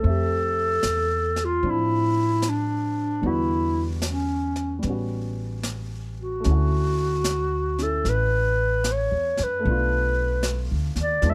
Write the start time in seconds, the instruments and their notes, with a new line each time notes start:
Already playing: clarinet A4
0.00 upright bass F2, grand piano A3 C4, brush sweep
0.06 grand piano G4 E5
0.83 upright bass E2, snare, hi-hat pedal
1.36 snare
1.45 clarinet F4
1.63 upright bass A2, grand piano F3 C4 D4, brush sweep
1.70 clarinet E4
2.42 snare, hi-hat pedal
2.49 clarinet D4
3.21 upright bass E2, grand piano D3 G3 B3, brush sweep
3.26 clarinet E4, grand piano F#4
4.02 snare, hi-hat pedal
4.08 clarinet C#4
4.56 snare
4.79 grand piano G3 B3, brush sweep, snare
4.84 upright bass A1, grand piano C#4
4.90 grand piano F#4
5.63 snare, hi-hat pedal
6.22 clarinet F#4
6.40 grand piano A3 C#4, brush sweep, snare
6.45 upright bass D2, grand piano E4
6.51 grand piano F#4
7.24 snare, hi-hat pedal
7.78 grand piano C#4 E4, snare
7.83 clarinet A4
8.04 upright bass A1, brush sweep, snare
8.09 clarinet B4
8.84 snare, hi-hat pedal
8.92 clarinet C#5
9.11 upright bass E2
9.37 upright bass F#2, snare
9.43 clarinet B4
9.59 grand piano A3 B3
9.64 upright bass B1, grand piano D4, brush sweep
9.71 grand piano F4
10.43 snare, hi-hat pedal
10.71 upright bass D2
10.96 upright bass D#2, snare
11.03 clarinet D5
11.22 upright bass E2, grand piano F3 G#3 B3 D4, brush sweep, snare
11.30 clarinet E5